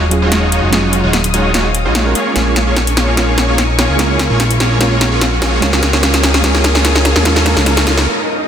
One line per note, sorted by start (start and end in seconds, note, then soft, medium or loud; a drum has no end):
0.00 0.61 D#1 loud
0.00 2.11 G#4 medium
0.00 2.11 F5 medium
0.00 2.12 D#6 medium
0.00 riser medium
0.09 0.69 F#3 medium
0.09 0.70 C#4 medium
0.09 0.71 F4 medium
0.09 closed hi-hat medium
0.13 0.71 G#4 loud
0.22 0.50 G#3 medium
0.22 0.50 D#4 medium
0.22 0.50 F4 medium
0.22 0.50 F#4 medium
0.22 0.50 C#5 medium
0.32 snare medium
0.32 closed hi-hat medium
0.52 0.70 G#3 medium
0.52 0.70 D#4 medium
0.52 0.70 F4 medium
0.52 0.70 F#4 medium
0.52 0.70 C#5 medium
0.52 closed hi-hat medium
0.63 1.02 F1 medium
0.70 1.71 F#3 medium
0.70 1.01 G#3 medium
0.70 1.72 C#4 medium
0.70 1.01 D#4 medium
0.70 1.01 F4 medium
0.70 1.73 F4 medium
0.70 1.01 F#4 medium
0.70 1.73 G#4 loud
0.70 1.01 C#5 medium
0.70 snare medium
0.70 closed hi-hat medium
0.93 closed hi-hat medium
1.04 1.87 D#1 medium
1.04 1.17 G#3 medium
1.04 1.17 D#4 medium
1.04 1.17 F4 medium
1.04 1.17 F#4 medium
1.04 1.17 C#5 medium
1.13 snare medium
1.13 closed hi-hat medium
1.24 closed hi-hat medium
1.34 1.52 G#3 medium
1.34 1.52 D#4 medium
1.34 1.52 F4 medium
1.34 1.52 F#4 medium
1.34 1.52 C#5 loud
1.34 closed hi-hat medium
1.54 1.68 G#3 loud
1.54 1.68 D#4 medium
1.54 1.68 F4 medium
1.54 1.68 F#4 medium
1.54 1.68 C#5 loud
1.54 snare medium
1.54 closed hi-hat medium
1.75 closed hi-hat medium
1.85 2.14 A#1 medium
1.85 2.13 G#3 medium
1.85 2.13 D#4 medium
1.85 2.13 F4 medium
1.85 2.13 F#4 medium
1.85 2.13 C#5 medium
1.95 snare medium
1.95 closed hi-hat medium
2.05 2.32 G#3 medium
2.05 2.33 C#4 medium
2.05 2.34 F4 medium
2.05 2.34 A#4 medium
2.15 2.33 A#3 medium
2.15 2.33 C#4 medium
2.15 2.33 F4 medium
2.15 2.33 G#4 medium
2.15 5.59 A#4 medium
2.15 2.33 C#5 medium
2.15 5.59 G#5 medium
2.15 5.59 C#6 medium
2.15 closed hi-hat medium
2.34 3.88 A#1 loud
2.34 3.14 G#3 medium
2.34 2.64 A#3 medium
2.34 3.15 C#4 medium
2.34 2.64 C#4 medium
2.34 2.64 F4 medium
2.34 3.16 F4 medium
2.34 2.64 G#4 medium
2.34 2.64 C#5 medium
2.34 snare medium
2.34 closed hi-hat medium
2.38 3.17 A#4 medium
2.56 snare medium
2.56 closed hi-hat medium
2.67 2.80 A#3 medium
2.67 2.80 C#4 medium
2.67 2.80 F4 medium
2.67 2.80 G#4 medium
2.67 2.80 C#5 medium
2.76 snare medium
2.76 closed hi-hat medium
2.87 closed hi-hat medium
2.97 3.15 A#3 medium
2.97 3.15 C#4 medium
2.97 3.15 F4 medium
2.97 3.15 G#4 medium
2.97 3.15 C#5 medium
2.97 snare medium
2.97 closed hi-hat medium
3.15 3.96 G#3 medium
3.15 3.46 A#3 medium
3.15 3.97 C#4 medium
3.15 3.46 C#4 medium
3.15 3.46 F4 medium
3.15 3.98 F4 medium
3.15 3.46 G#4 medium
3.15 3.46 C#5 medium
3.15 snare medium
3.15 closed hi-hat medium
3.19 3.98 A#4 medium
3.38 snare medium
3.38 closed hi-hat medium
3.48 3.62 A#3 medium
3.48 3.62 C#4 medium
3.48 3.62 F4 medium
3.48 3.62 G#4 medium
3.48 3.62 C#5 medium
3.58 snare medium
3.58 closed hi-hat medium
3.78 3.97 A#3 medium
3.78 3.97 C#4 medium
3.78 3.97 F4 medium
3.78 3.97 G#4 medium
3.78 3.97 C#5 medium
3.78 snare medium
3.78 closed hi-hat medium
3.89 4.29 C#2 medium
3.97 4.77 G#3 medium
3.97 4.28 A#3 medium
3.97 4.79 C#4 medium
3.97 4.28 C#4 medium
3.97 4.28 F4 medium
3.97 4.79 F4 medium
3.97 4.28 G#4 medium
3.97 4.28 C#5 medium
3.97 snare medium
3.97 closed hi-hat medium
4.01 4.80 A#4 medium
4.19 snare medium
4.19 closed hi-hat medium
4.30 5.61 A#1 loud
4.30 4.43 A#3 medium
4.30 4.43 C#4 medium
4.30 4.43 F4 medium
4.30 4.43 G#4 medium
4.30 4.43 C#5 medium
4.40 snare medium
4.40 closed hi-hat medium
4.51 closed hi-hat medium
4.60 4.78 A#3 medium
4.60 4.78 C#4 medium
4.60 4.78 F4 medium
4.60 4.78 G#4 medium
4.60 4.78 C#5 medium
4.60 snare medium
4.60 closed hi-hat medium
4.78 5.59 G#3 medium
4.78 5.09 A#3 medium
4.78 5.60 C#4 medium
4.78 5.09 C#4 medium
4.78 5.09 F4 medium
4.78 5.61 F4 medium
4.78 5.09 G#4 medium
4.78 5.09 C#5 medium
4.78 snare medium
4.78 closed hi-hat medium
4.83 5.62 A#4 loud
5.01 snare medium
5.01 closed hi-hat medium
5.11 5.25 A#3 medium
5.11 5.25 C#4 medium
5.11 5.25 F4 medium
5.11 5.25 G#4 medium
5.11 5.25 C#5 medium
5.21 snare medium
5.21 closed hi-hat medium
5.42 5.60 A#3 medium
5.42 5.60 C#4 medium
5.42 5.60 F4 medium
5.42 5.60 G#4 medium
5.42 5.60 C#5 medium
5.42 snare medium
5.42 closed hi-hat medium
5.60 7.15 C#2 loud
5.60 6.00 G#3 medium
5.60 5.91 A#3 medium
5.60 8.48 B3 medium
5.60 6.01 C#4 medium
5.60 5.91 C#4 medium
5.60 5.91 F4 medium
5.60 6.02 F4 medium
5.60 5.91 G#4 medium
5.60 5.91 C#5 medium
5.60 8.48 F5 medium
5.60 8.48 D#6 medium
5.60 snare medium
5.60 closed hi-hat medium
5.64 6.02 A#4 loud
5.73 snare medium
5.83 snare medium
5.83 closed hi-hat medium
5.93 6.02 A#3 medium
5.93 6.02 C#4 medium
5.93 6.02 F4 medium
5.93 6.02 G#4 medium
5.93 6.02 C#5 medium
5.93 snare medium
6.01 6.41 G#3 medium
6.01 6.32 A#3 medium
6.01 6.42 C#4 medium
6.01 6.32 C#4 medium
6.01 6.32 F4 medium
6.01 6.43 F4 medium
6.01 6.32 G#4 medium
6.01 6.43 A#4 loud
6.01 6.32 C#5 medium
6.01 snare medium
6.01 closed hi-hat medium
6.14 snare medium
6.14 closed hi-hat medium
6.23 snare loud
6.23 closed hi-hat medium
6.34 6.42 A#3 medium
6.34 6.42 C#4 medium
6.34 6.42 F4 medium
6.34 6.42 G#4 medium
6.34 6.42 C#5 medium
6.34 snare medium
6.42 6.82 G#3 medium
6.42 6.72 A#3 medium
6.42 6.83 C#4 medium
6.42 6.72 C#4 medium
6.42 6.72 F4 medium
6.42 6.84 F4 medium
6.42 6.72 G#4 medium
6.42 6.72 C#5 medium
6.42 snare medium
6.42 closed hi-hat medium
6.46 6.84 A#4 loud
6.55 snare medium
6.64 snare loud
6.64 closed hi-hat medium
6.75 6.83 A#3 medium
6.75 6.83 C#4 medium
6.75 6.83 F4 medium
6.75 6.83 G#4 medium
6.75 6.83 C#5 medium
6.75 snare medium
6.83 7.22 G#3 medium
6.83 7.13 A#3 medium
6.83 7.24 C#4 medium
6.83 7.13 C#4 medium
6.83 7.13 F4 medium
6.83 7.24 F4 medium
6.83 7.13 G#4 medium
6.83 7.25 A#4 loud
6.83 7.13 C#5 medium
6.83 snare loud
6.83 closed hi-hat medium
6.96 snare medium
7.05 snare loud
7.05 closed hi-hat medium
7.16 7.55 D#2 medium
7.16 7.24 A#3 medium
7.16 7.24 C#4 medium
7.16 7.24 F4 medium
7.16 7.24 G#4 medium
7.16 7.24 C#5 loud
7.16 snare medium
7.24 7.43 G#3 medium
7.24 7.44 A#3 medium
7.24 7.44 C#4 medium
7.24 7.44 F4 medium
7.24 7.45 F4 medium
7.24 7.44 G#4 medium
7.24 7.44 C#5 medium
7.24 snare loud
7.24 closed hi-hat medium
7.28 7.45 A#4 loud
7.36 snare medium
7.44 7.63 G#3 medium
7.44 7.65 A#3 medium
7.44 7.65 C#4 medium
7.44 7.65 F4 medium
7.44 7.65 G#4 medium
7.44 7.65 C#5 medium
7.44 snare loud
7.44 closed hi-hat medium
7.48 7.66 A#4 loud
7.57 8.07 C#2 loud
7.57 snare medium
7.64 7.83 G#3 medium
7.64 7.85 A#3 medium
7.64 7.85 C#4 medium
7.64 7.85 F4 medium
7.64 7.86 F4 medium
7.64 7.85 G#4 medium
7.64 7.85 C#5 medium
7.64 snare loud
7.64 closed hi-hat medium
7.68 7.86 A#4 loud
7.77 snare medium
7.77 closed hi-hat medium
7.85 8.05 G#3 medium
7.85 8.06 A#3 medium
7.85 8.05 C#4 medium
7.85 8.06 C#4 medium
7.85 8.06 F4 medium
7.85 8.06 G#4 medium
7.85 8.07 A#4 loud
7.85 8.06 C#5 medium
7.85 snare loud
7.85 closed hi-hat medium
7.98 snare medium
8.07 swell medium